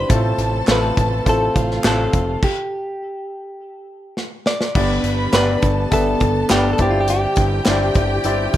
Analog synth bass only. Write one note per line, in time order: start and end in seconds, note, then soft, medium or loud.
0.09 0.34 A1 loud
0.38 0.62 A1 loud
0.68 0.92 A1 loud
0.97 1.21 A1 medium
1.26 1.50 A1 loud
1.56 1.79 A1 medium
1.85 2.08 A1 loud
2.13 2.37 F1 medium
4.75 4.99 G1 loud
5.04 5.28 G1 medium
5.33 5.57 G1 loud
5.63 5.87 G1 loud
5.92 6.16 G1 medium
6.21 6.45 G1 loud
6.51 6.74 G1 loud
6.79 7.27 G1 loud
7.37 7.61 G1 loud
7.67 7.91 G1 medium
7.95 8.19 G1 loud
8.24 8.48 G1 medium
8.54 8.57 G1 medium